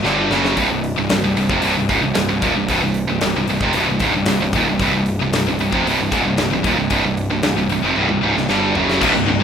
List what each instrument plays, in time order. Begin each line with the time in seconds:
0.04 picked electric bass G1, distorted electric guitar G2 D3 G3, snare
0.30 picked electric bass F#1, distorted electric guitar F#2 C#3 F#3, snare
0.45 snare
0.57 picked electric bass C1, distorted electric guitar C2 G2, kick, open hi-hat
0.69 picked electric bass C1, distorted electric guitar C2 G2
0.84 open hi-hat
0.96 picked electric bass C1, distorted electric guitar C2 G2
1.09 picked electric bass C1, distorted electric guitar C2 G2, snare, open hi-hat
1.23 picked electric bass C1, distorted electric guitar C2 G2
1.36 picked electric bass C1, distorted electric guitar C2 G2, open hi-hat
1.49 picked electric bass F1, distorted electric guitar F2 C3, kick
1.62 picked electric bass C1, distorted electric guitar C2 G2, open hi-hat
1.76 picked electric bass C1, distorted electric guitar C2 G2
1.89 picked electric bass C#1, distorted electric guitar C#2 G#2, kick, open hi-hat
2.03 picked electric bass C1, distorted electric guitar C2 G2
2.15 picked electric bass C1, distorted electric guitar C2 G2, snare, open hi-hat
2.29 picked electric bass C1, distorted electric guitar C2 G2
2.42 picked electric bass D#1, distorted electric guitar D#2 A#2, kick, open hi-hat
2.56 picked electric bass C1, distorted electric guitar C2 G2
2.68 picked electric bass C1, distorted electric guitar C2 G2, kick, open hi-hat
2.83 picked electric bass C1, distorted electric guitar C2 G2
2.94 open hi-hat
3.09 picked electric bass C1, distorted electric guitar C2 G2
3.21 picked electric bass C1, distorted electric guitar C2 G2, snare, open hi-hat
3.36 picked electric bass C1, distorted electric guitar C2 G2
3.48 picked electric bass C1, distorted electric guitar C2 G2, open hi-hat
3.60 picked electric bass F1, distorted electric guitar F2 C3, kick
3.73 picked electric bass C1, distorted electric guitar C2 G2, open hi-hat
3.89 picked electric bass C1, distorted electric guitar C2 G2
3.99 picked electric bass C#1, distorted electric guitar C#2 G#2, kick, open hi-hat
4.14 picked electric bass C1, distorted electric guitar C2 G2
4.26 picked electric bass C1, distorted electric guitar C2 G2, snare, open hi-hat
4.40 picked electric bass C1, distorted electric guitar C2 G2
4.53 picked electric bass D#1, distorted electric guitar D#2 A#2, kick, open hi-hat
4.66 picked electric bass C1, distorted electric guitar C2 G2
4.79 picked electric bass C1, distorted electric guitar C2 G2, kick, open hi-hat
4.92 picked electric bass C1, distorted electric guitar C2 G2
5.06 open hi-hat
5.19 picked electric bass C1, distorted electric guitar C2 G2
5.33 picked electric bass C1, distorted electric guitar C2 G2, snare, open hi-hat
5.45 picked electric bass C1, distorted electric guitar C2 G2
5.58 picked electric bass C1, distorted electric guitar C2 G2, open hi-hat
5.72 picked electric bass F1, distorted electric guitar F2 C3, kick
5.85 picked electric bass C1, distorted electric guitar C2 G2, open hi-hat
5.98 picked electric bass C1, distorted electric guitar C2 G2
6.11 picked electric bass C#1, distorted electric guitar C#2 G#2, kick, open hi-hat
6.25 picked electric bass C1, distorted electric guitar C2 G2
6.38 picked electric bass C1, distorted electric guitar C2 G2, snare, open hi-hat
6.50 picked electric bass C1, distorted electric guitar C2 G2
6.63 picked electric bass D#1, distorted electric guitar D#2 A#2, kick, open hi-hat
6.76 picked electric bass C1, distorted electric guitar C2 G2
6.90 picked electric bass C1, distorted electric guitar C2 G2, kick, open hi-hat
7.03 picked electric bass C1, distorted electric guitar C2 G2
7.17 open hi-hat
7.29 picked electric bass C1, distorted electric guitar C2 G2
7.43 picked electric bass C1, distorted electric guitar C2 G2, snare, open hi-hat
7.56 picked electric bass C1, distorted electric guitar C2 G2
7.69 picked electric bass C1, distorted electric guitar C2 G2, open hi-hat
7.82 picked electric bass F1, distorted electric guitar F2 C3
7.95 picked electric bass C1, distorted electric guitar C2 G2, high tom
8.09 picked electric bass C1, distorted electric guitar C2 G2, high tom
8.21 picked electric bass C#1, distorted electric guitar C#2 G#2
8.35 picked electric bass C1, distorted electric guitar C2 G2, snare
8.49 picked electric bass G1, distorted electric guitar G2 D3 G3, snare
8.75 picked electric bass F#1, distorted electric guitar F#2 C#3 F#3, floor tom
8.90 snare
9.01 picked electric bass C1, distorted electric guitar C2 G2, string section C3 G3 D4 D#4, kick, crash, china
9.14 picked electric bass C1, distorted electric guitar C2 G2
9.28 picked electric bass C1, distorted electric guitar C2 G2
9.40 distorted electric guitar C2 G2